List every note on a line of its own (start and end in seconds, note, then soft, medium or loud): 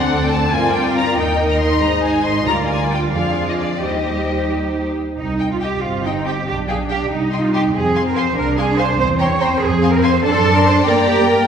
0.00 0.54 D2 medium
0.00 0.52 C4 medium
0.00 0.52 C4 soft
0.00 0.54 D4 soft
0.00 0.55 A4 medium
0.00 0.54 D5 medium
0.00 0.23 F#5 medium
0.23 0.34 G5 medium
0.31 0.53 A5 medium
0.52 1.18 G2 medium
0.52 1.18 C4 medium
0.52 1.17 F4 medium
0.52 1.18 F4 medium
0.52 1.17 A#4 medium
0.52 1.17 D5 medium
0.52 0.74 G#5 medium
0.74 0.96 G5 medium
0.96 1.17 A#5 medium
1.17 1.81 D#2 medium
1.17 1.81 A#3 soft
1.17 1.81 D#4 soft
1.17 1.82 D#4 soft
1.17 1.81 A#4 medium
1.17 2.47 D#5 medium
1.17 1.49 G5 medium
1.50 1.60 A#5 medium
1.60 1.81 C6 medium
1.82 2.46 G#1 soft
1.82 2.46 G#3 soft
1.82 2.46 D#4 soft
1.82 2.47 C5 soft
1.82 2.04 A#5 medium
2.04 2.25 G#5 medium
2.26 2.48 C6 medium
2.46 3.13 D2 soft
2.46 3.13 G3 soft
2.46 3.81 F4 soft
2.46 3.13 F4 soft
2.46 3.12 A#4 soft
2.46 3.12 D5 soft
2.46 2.55 A#5 medium
2.68 2.90 G#5 soft
2.92 3.00 G5 medium
3.13 3.81 F2 soft
3.13 3.82 F3 soft
3.13 3.82 D4 soft
3.13 3.82 G#4 soft
3.13 3.80 D5 soft
3.13 3.47 F5 soft
3.49 3.53 D#5 soft
3.60 3.82 D5 soft
3.81 4.98 D#2 soft
3.81 4.98 G3 soft
3.81 4.96 D#4 soft
3.81 4.95 G4 soft
3.81 4.82 G4 soft
3.81 4.97 C5 soft
3.81 4.52 D#5 soft
5.18 5.73 C2 soft
5.18 5.48 D#4 medium
5.39 5.46 D#5 soft
5.39 5.46 G5 soft
5.39 5.47 G5 soft
5.52 5.62 F4 soft
5.61 5.83 G4 medium
5.61 5.69 D#5 soft
5.61 5.68 G5 soft
5.61 5.69 G5 soft
5.83 6.37 G1 soft
5.83 6.44 C4 medium
5.83 6.05 F4 medium
6.05 6.27 D#4 medium
6.05 6.13 D#5 soft
6.05 6.12 G5 soft
6.05 6.13 G5 soft
6.26 6.47 G4 medium
6.26 6.34 D#5 soft
6.26 6.33 G5 soft
6.26 6.34 G5 soft
6.48 7.01 B1 soft
6.48 7.11 D4 soft
6.48 6.56 G4 medium
6.68 6.77 G#4 medium
6.68 6.76 F5 soft
6.68 6.75 G5 soft
6.68 6.76 G5 soft
6.90 7.11 G4 medium
6.90 6.97 F5 soft
6.90 6.97 G5 soft
7.11 7.65 C2 medium
7.11 7.43 D#4 medium
7.11 7.75 D#4 medium
7.32 7.40 D#5 soft
7.32 7.40 G5 soft
7.32 7.39 C6 soft
7.44 7.55 F4 medium
7.54 7.62 G4 medium
7.54 7.61 D#5 soft
7.54 7.61 G5 soft
7.54 7.62 C6 soft
7.74 8.27 F2 medium
7.74 8.36 C4 medium
7.74 8.06 G#4 medium
7.95 8.02 F5 soft
7.95 8.02 G#5 soft
7.95 8.03 C6 soft
8.07 8.17 A#4 medium
8.16 8.37 C5 medium
8.16 8.23 F5 soft
8.16 8.23 G#5 soft
8.16 8.23 C6 soft
8.36 8.89 C2 medium
8.36 8.98 D4 medium
8.36 8.58 A#4 medium
8.58 8.79 G#4 medium
8.58 8.65 F5 soft
8.58 8.64 G#5 soft
8.58 8.65 C6 soft
8.78 8.98 C5 medium
8.78 8.85 F5 medium
8.78 8.85 G#5 soft
8.78 8.86 C6 medium
8.99 9.52 E2 medium
8.99 9.62 C4 medium
8.99 9.07 C5 medium
9.19 9.41 C#5 medium
9.19 9.26 G5 medium
9.19 9.26 A#5 medium
9.19 9.28 C6 soft
9.40 9.63 C5 medium
9.40 9.47 G5 medium
9.40 9.48 A#5 medium
9.40 9.49 C6 soft
9.62 10.15 F2 medium
9.62 10.24 C4 medium
9.62 9.94 G#4 medium
9.82 9.89 F5 medium
9.82 9.90 G#5 soft
9.82 9.91 C6 soft
9.95 10.05 A#4 medium
10.03 10.25 C5 medium
10.03 10.10 F5 medium
10.03 10.10 G#5 medium
10.03 10.12 C6 medium
10.25 10.84 F#2 medium
10.25 10.86 D4 medium
10.25 10.56 A4 medium
10.25 11.47 D5 medium
10.25 10.83 A5 medium
10.25 10.84 C6 medium
10.56 10.67 A#4 medium
10.66 10.74 C5 loud
10.87 11.47 G2 medium
10.87 11.47 A#3 medium
10.87 10.95 A#4 medium
10.87 11.47 G5 medium
10.87 11.47 A#5 medium
11.08 11.29 G4 medium
11.30 11.47 A#4 medium